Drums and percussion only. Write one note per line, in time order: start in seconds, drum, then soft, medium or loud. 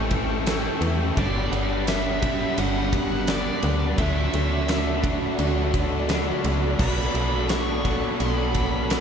0.11 kick medium
0.11 ride medium
0.46 snare loud
0.46 ride loud
0.82 ride medium
1.17 kick loud
1.17 ride medium
1.53 ride medium
1.87 snare loud
1.87 ride loud
2.22 kick medium
2.22 ride medium
2.58 ride loud
2.93 kick medium
2.93 ride medium
3.27 snare loud
3.27 ride medium
3.63 ride medium
3.98 kick loud
3.98 ride loud
4.33 ride medium
4.68 snare loud
4.68 ride loud
5.04 kick medium
5.04 ride medium
5.39 ride loud
5.74 kick medium
5.74 ride medium
6.09 snare loud
6.09 ride medium
6.44 ride medium
6.79 kick loud
6.79 crash loud
7.15 ride medium
7.49 snare loud
7.49 ride medium
7.85 kick medium
7.85 ride medium
8.20 ride medium
8.54 kick medium
8.54 ride medium
8.90 snare loud
8.90 ride loud